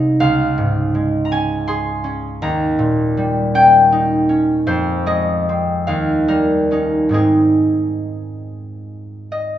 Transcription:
0.00 0.21 C2 soft
0.00 0.22 C3 soft
0.00 0.93 G#3 soft
0.00 0.21 C4 soft
0.00 0.22 D#4 soft
0.00 1.67 G#4 soft
0.00 0.22 C5 medium
0.00 0.21 D#5 medium
0.20 2.46 C#2 medium
0.20 2.46 F5 medium
0.58 2.46 G#2 soft
0.95 2.46 G#3 soft
1.25 1.36 A#5 medium
1.32 2.03 C#4 soft
1.32 2.46 G#5 medium
1.68 2.46 G#4 soft
1.68 2.95 C6 medium
2.04 3.54 C#4 soft
2.42 4.71 D#2 medium
2.42 4.71 A#5 medium
2.79 4.70 A#2 soft
3.17 4.71 G3 soft
3.55 4.28 C#4 soft
3.55 4.71 G5 medium
3.92 4.71 D#4 soft
4.29 4.71 C#4 soft
4.67 5.90 F2 medium
4.67 5.91 C5 medium
5.06 5.91 G#3 soft
5.06 6.45 D#5 medium
5.49 5.92 C4 soft
5.87 7.19 D#2 soft
5.87 7.19 F5 medium
6.28 7.19 G3 soft
6.28 7.18 A#4 medium
6.71 7.19 C#4 soft
6.71 7.12 D#4 soft
7.09 9.58 G#2 soft
7.09 9.58 G#3 soft
7.09 9.58 C4 soft
7.13 9.58 D#4 soft
7.13 9.58 G#4 soft
9.32 9.58 D#5 soft

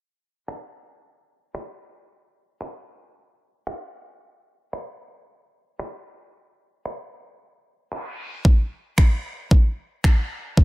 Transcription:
0.48 finger snap medium
1.55 finger snap medium
2.61 finger snap loud
3.67 finger snap loud
4.73 finger snap loud
5.79 finger snap loud
6.86 finger snap loud
7.92 finger snap loud
8.45 kick loud
8.98 finger snap medium
8.98 kick loud
9.51 kick loud
10.04 finger snap loud
10.04 kick loud
10.57 kick loud

